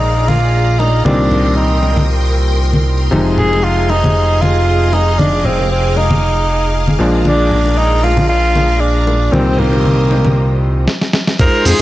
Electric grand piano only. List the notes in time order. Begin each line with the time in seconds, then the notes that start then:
Already playing: A#2 F3 G#3 D5
1.05 A#2 D#3 G3 C4
3.11 C3 F3 G#3 D#4
6.99 A#2 F3 G#3 D4
9.32 A#2 D#3 G3 C4
11.39 G#3 D#4 F4 C5